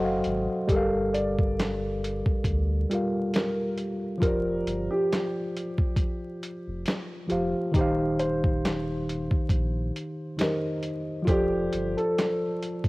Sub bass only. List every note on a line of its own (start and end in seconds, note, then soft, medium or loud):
0.00 0.21 F#1 loud
0.26 0.48 G#1 loud
0.69 2.22 G1 loud
2.45 2.85 D2 medium
4.23 4.62 F1 loud
4.66 4.89 G1 loud
6.68 6.85 F1 medium
7.31 7.54 F1 loud
7.75 9.28 D#1 loud
9.50 9.91 A#1 medium
11.28 11.68 F1 loud
11.74 11.95 G1 medium